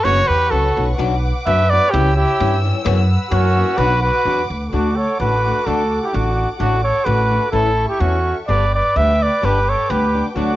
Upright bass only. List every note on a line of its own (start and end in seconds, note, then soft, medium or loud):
0.05 0.21 F#1 loud
0.29 0.49 E2 medium
0.52 0.74 C#2 medium
0.77 0.97 B1 medium
0.99 1.30 B1 loud
1.47 1.77 F#2 loud
1.94 2.24 C#2 loud
2.40 2.70 G2 loud
2.86 3.15 F#2 loud
3.31 3.61 F#2 loud
3.78 4.08 B1 loud
4.25 4.48 E2 medium
4.50 4.70 D2 medium
4.73 5.03 D2 medium
5.20 5.50 A1 medium
5.66 5.97 D2 medium
6.14 6.44 A1 loud
6.60 6.90 A1 loud
7.06 7.37 A1 loud
7.53 7.84 A1 medium
8.00 8.32 E2 loud
8.49 8.80 G1 medium
8.96 9.27 D2 loud
9.43 9.74 G1 medium
9.90 10.20 D2 loud
10.35 10.56 D2 medium